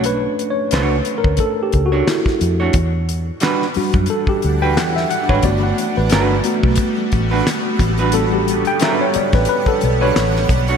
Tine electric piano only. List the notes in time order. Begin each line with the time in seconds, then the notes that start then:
Already playing: A3 C#4 D4 C#5
0.06 B4
0.50 C#5
0.73 B4
1.18 A#4
1.40 A4
1.63 G4
1.86 F#4
2.08 E4
3.76 G3 D4 F#4
4.10 A4
4.29 G4
4.62 G5
4.77 F#5
4.96 E5
5.10 F#5
5.30 C#5
5.44 A3 B3 F#4 D5
5.63 F#5
5.97 B4
6.45 A3 B3 F#4
8.14 G3 B3 D4 F#4 A4
8.33 G4
8.67 G5
8.82 E5
9.01 C#5
9.16 D5
9.35 B4
9.49 B4
9.68 A4
10.02 C#5